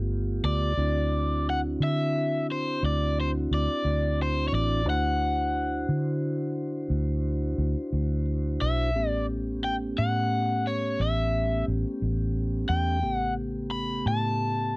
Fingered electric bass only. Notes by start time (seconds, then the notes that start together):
Already playing: G1
0.44 D2
0.77 D2
1.80 D3
2.83 D2
3.51 D2
3.85 D2
4.53 A1
4.86 D2
5.89 D3
6.90 D2
7.58 D2
7.93 D2
8.62 B1
8.95 A1
9.99 A2
11.00 A1
11.68 A1
12.02 A1
12.69 E2
13.03 A1
14.06 A2